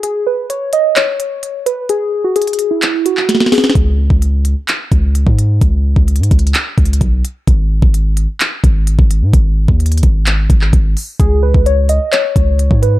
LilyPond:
<<
  \new Staff \with { instrumentName = "Synth keys" } { \time 4/4 \key cis \minor \tempo 4 = 129 gis'8 b'8 cis''8 dis''8 cis''4. b'8 | gis'8. fis'16 gis'8. e'8. fis'4 gis'8 | r1 | r1 |
r1 | r1 | gis'8 b'8 cis''8 dis''8 cis''4. b'8 | }
  \new Staff \with { instrumentName = "808-style bass" } { \clef bass \time 4/4 \key cis \minor r1 | r1 | cis,8. cis,4 r8. cis,8. gis,8. | cis,8. cis,8 gis,16 cis,8 r8 cis,8 b,,8 r8 |
gis,,8. gis,,4 r8. gis,,8. gis,,8 gis,16 | gis,,8. dis,8. gis,,4 gis,,8 gis,,8 r8 | cis,8. cis,4 r8. cis,8. gis,8. | }
  \new DrumStaff \with { instrumentName = "Drums" } \drummode { \time 4/4 hh4 hh8 hh8 <hc hh>8 hh8 hh8 hh8 | hh4 hh32 hh32 hh32 hh32 hh8 <hc hh>8 hh16 hc16 <hh sn>32 sn32 sn32 sn32 <hho sn>32 sn32 sn32 sn32 | <hh bd>8. bd16 hh8 hh8 <hc hh>8 <hh bd>8 hh16 bd16 hh8 | <hh bd>8. bd16 \tuplet 3/2 { hh16 hh16 hh16 <hh bd>16 hh16 hh16 <hc hh>16 r16 r16 <hh bd>16 hh16 hh16 } <hh bd>8 hh8 |
<hh bd>8. bd16 hh8 hh8 <hc hh>8 <hh bd>8 hh16 bd16 hh8 | <hh bd>8. bd16 hh32 hh32 hh32 hh32 <hh bd>8 <hc hh>8 <hh bd>16 hc16 <hh bd>8 hho8 | <hh bd>8. bd16 hh8 hh8 <hc hh>8 <hh bd>8 hh16 bd16 hh8 | }
>>